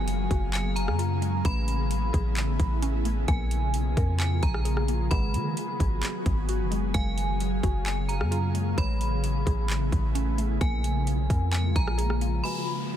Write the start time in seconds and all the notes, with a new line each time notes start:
Already playing: F#1 C#3 F#3 G#3 A#3 F4 G#4 A#4 F5 G#5, downlifter
0.08 closed hi-hat
0.31 F#1 F#4, kick, closed hi-hat
0.53 G#5, clap, closed hi-hat
0.76 A#5, closed hi-hat
0.88 F#2, cross-stick
0.99 F4, closed hi-hat
1.22 G#3, closed hi-hat
1.45 A1 A3 B3 C#4 E4 B4 B5, kick, closed hi-hat
1.68 closed hi-hat
1.91 closed hi-hat
2.13 A1 G#4, kick, closed hi-hat
2.37 clap, closed hi-hat
2.60 A1, kick, closed hi-hat
2.82 C#4, closed hi-hat
3.05 A3, closed hi-hat
3.28 A#1 F3 A#3 F4 G#4 A#4 G#5, kick, closed hi-hat
3.51 closed hi-hat
3.74 B1, closed hi-hat
3.97 F2 A#4, kick, closed hi-hat
4.20 G#5, clap, closed hi-hat
4.43 A#1 A#5, kick, closed hi-hat
4.54 cross-stick
4.65 G#4, closed hi-hat
4.77 cross-stick
4.88 A#3, closed hi-hat
5.11 G#1 D#3 F#3 G#3 B3 F#4 G#4 B4 F#5 B5, kick, closed hi-hat
5.34 D#3, closed hi-hat
5.57 closed hi-hat
5.80 G#1 G#4, kick, closed hi-hat
6.03 clap, closed hi-hat
6.26 G#1, kick, closed hi-hat
6.49 F#4, closed hi-hat
6.60 F#1
6.71 G#3, closed hi-hat
6.94 F#1 C#3 G#3 A#3 A#4 F5 G#5, kick, closed hi-hat
7.18 closed hi-hat
7.40 closed hi-hat
7.63 F#1 F#4, kick, closed hi-hat
7.86 G#5, clap, closed hi-hat
8.09 A#5, closed hi-hat
8.21 F#2, cross-stick
8.31 F4, closed hi-hat
8.54 G#3, closed hi-hat
8.77 A1 A3 B3 E4 B4 C#5 B5, kick, closed hi-hat
9.01 closed hi-hat
9.24 closed hi-hat
9.46 A1 G#4, kick, closed hi-hat
9.70 clap, closed hi-hat
9.92 A1, kick, closed hi-hat
10.15 C#4, closed hi-hat
10.38 A3, closed hi-hat
10.61 A#1 F3 G#3 A#3 F4 A#4 G#5, kick, closed hi-hat
10.84 closed hi-hat
11.07 B1, closed hi-hat
11.30 F2 A#4, kick, closed hi-hat
11.52 G#5, clap, closed hi-hat
11.76 A#1 A#5, kick, closed hi-hat
11.87 cross-stick
11.98 G#4, closed hi-hat
12.10 cross-stick
12.21 A#3, closed hi-hat
12.44 D#3 F#3 G#3 B3 F#4 B4 G#5 B5, downlifter